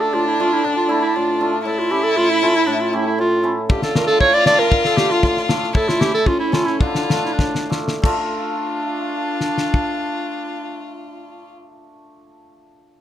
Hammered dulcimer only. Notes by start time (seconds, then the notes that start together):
Already playing: D3
0.13 A2
0.40 A3 D4 F4
0.64 D3
0.88 A3 D4 E4
1.16 A2
1.40 A3 D4 F4
1.65 A2
1.90 A3 C#4 E4
2.16 A2
2.42 A3 C#4 E4
2.67 A2
2.93 A3 C#4 G4
3.19 A2
3.43 A3 C#4 E4
3.69 D3
3.95 A3 D4 F4
4.20 A2
4.46 A3 D4 F4
4.72 D3
4.97 A3 D4 F4
5.23 A2
5.48 A3 D4 F4
5.74 A2
6.00 A3 C#4 E4
6.27 A2
6.52 A3 C#4 E4
6.81 D3
7.10 A3 D4 F4
7.40 A2
7.70 A3 D4 F4
8.02 A3 D4 F4